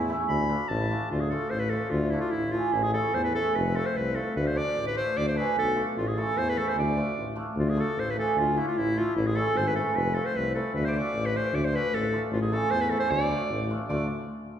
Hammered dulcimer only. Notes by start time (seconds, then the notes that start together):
0.09 A3 C#4 E4
0.49 A3 D4 F4
0.91 A3 D4 F4
1.31 A3 D4 F4
1.71 A3 D4 F4
2.13 A3 D4 F4
2.53 A3 D4 G#4
2.94 A3 C#4 E4
3.35 A3 C#4 E4
3.75 A3 C4 F4
4.15 A3 C4 F4
4.55 A3 D4 F4
4.95 A3 D4 F4
5.35 A3 D4 G#4
5.75 A3 D4 F4
6.17 A3 C#4 E4
6.57 A3 C#4 E4
6.96 A3 D4 F4
7.36 A3 D4 F4
7.76 A3 D4 F4
8.16 A3 D4 G#4
8.57 A3 D4 F4
8.96 A3 D4 E4
9.35 A3 C#4 E4
9.74 A3 C#4 E4
10.14 A3 C4 F4
10.55 A3 C4 E4
10.96 A3 D4 F4
11.35 A3 D4 F4
11.73 A3 D4 F4
12.13 A3 D4 F4
12.52 A3 C#4 E4
12.90 A3 C#4 E4
13.30 A3 D4 F4
13.70 A3 D4 F4
13.89 A3 D4 F4